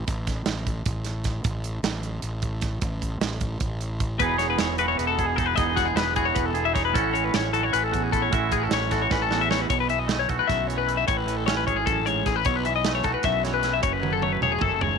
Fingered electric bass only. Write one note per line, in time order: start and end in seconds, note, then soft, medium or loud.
0.08 0.45 A1 medium
0.46 0.83 A1 medium
0.86 1.41 A1 medium
1.44 1.82 A1 medium
1.83 2.21 A1 medium
2.23 2.79 A1 medium
2.82 3.19 A1 medium
3.20 3.58 A1 medium
3.61 4.17 A1 medium
4.20 4.57 E1 medium
4.59 4.96 E1 medium
4.99 5.54 E1 medium
5.58 5.95 E1 medium
5.95 6.33 E1 medium
6.37 6.92 E1 medium
6.95 7.32 A1 medium
7.34 7.71 A1 medium
7.74 8.29 A1 medium
8.33 8.70 A1 medium
8.71 9.09 A1 medium
9.11 9.67 A1 medium
9.70 10.26 B1 medium
10.30 10.39 B1 medium
10.50 11.05 B1 medium
11.08 11.64 A1 loud
11.67 11.85 G#1 medium
11.87 12.24 A1 medium
12.27 12.46 A1 medium
12.46 13.01 B1 medium
13.05 13.14 B1 medium
13.24 13.80 B1 medium
13.83 14.39 F#1 medium
14.41 14.60 E1 medium
14.62 14.98 F#1 medium